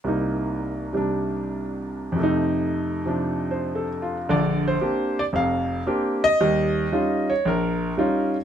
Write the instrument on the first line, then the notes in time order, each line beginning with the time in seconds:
grand piano
0.04 C2 C3 A#3
0.08 D#4
0.93 C3 G3 D4
2.12 F2 C3
2.20 A3 D#4
3.06 C3 F3 D4
3.51 C5
3.75 A4
4.02 F4
4.29 A#1 D3 D5
4.68 C5
4.81 A#3 C4 D4 G4
5.19 D5
5.33 F1 F2 F5
5.87 A#3 C4 D4 G4
6.24 D#5
6.41 D#2 G3
6.92 G3 C#4 D#4 F4
7.30 C#5
7.45 A#1 A#4
7.98 G3 C#4 D#4 F4